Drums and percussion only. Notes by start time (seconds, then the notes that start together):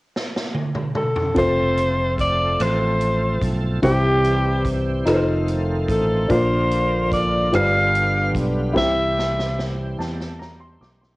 0.16 snare
0.36 snare
0.54 high tom
0.75 mid tom
0.95 mid tom
1.16 floor tom
1.36 kick, closed hi-hat
1.78 closed hi-hat
2.18 kick, closed hi-hat
2.60 cross-stick, closed hi-hat
3.01 closed hi-hat
3.42 kick, closed hi-hat
3.83 kick, closed hi-hat
4.25 closed hi-hat
4.65 kick, closed hi-hat
5.07 cross-stick, closed hi-hat
5.48 closed hi-hat
5.88 kick, closed hi-hat
6.30 kick, closed hi-hat
6.71 closed hi-hat
7.12 kick, closed hi-hat
7.53 cross-stick, closed hi-hat
7.95 closed hi-hat
8.35 kick, closed hi-hat
8.76 kick, snare
9.19 snare
9.39 snare
9.59 snare
10.00 snare
10.21 snare
10.42 snare
10.83 snare
11.03 snare